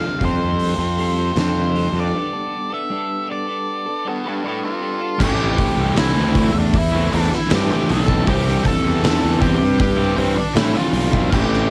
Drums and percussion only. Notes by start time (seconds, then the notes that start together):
0.21 kick, open hi-hat
0.59 open hi-hat
0.98 open hi-hat
1.36 snare, open hi-hat
1.75 open hi-hat
5.20 kick, crash
5.58 kick, open hi-hat
5.96 snare, open hi-hat
6.35 kick, open hi-hat
6.73 kick, open hi-hat
7.13 open hi-hat
7.33 snare
7.50 snare, open hi-hat
7.89 open hi-hat
8.08 kick
8.27 kick, open hi-hat
8.48 snare
8.65 kick, open hi-hat
9.04 snare, open hi-hat
9.41 kick, open hi-hat
9.80 kick, open hi-hat
10.18 open hi-hat
10.56 snare, open hi-hat
10.94 open hi-hat
11.13 kick
11.32 kick, crash
11.53 snare